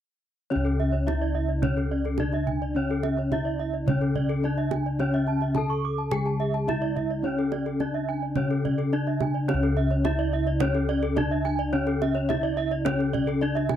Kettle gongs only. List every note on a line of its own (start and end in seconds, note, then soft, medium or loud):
0.51 2.15 C#4 medium
0.56 3.86 C#2 medium
1.07 1.15 D4 soft
2.19 2.27 D4 soft
2.75 4.39 C#4 medium
3.31 3.39 D4 soft
3.86 5.51 C#3 medium
4.43 4.51 D4 soft
4.99 6.64 C#4 soft
5.55 5.63 D4 soft
6.11 7.76 C#3 medium
6.67 6.75 D4 soft
7.23 8.88 C#4 soft
7.80 7.88 D4 soft
8.36 10.00 C#3 medium
8.93 9.01 D4 soft
9.49 11.13 C#4 soft
9.54 12.84 C#2 medium
10.06 10.14 D4 soft
11.18 11.26 D4 soft
11.74 13.38 C#4 soft
12.30 12.38 D4 soft
12.87 13.76 C#3 medium
13.42 13.50 D4 soft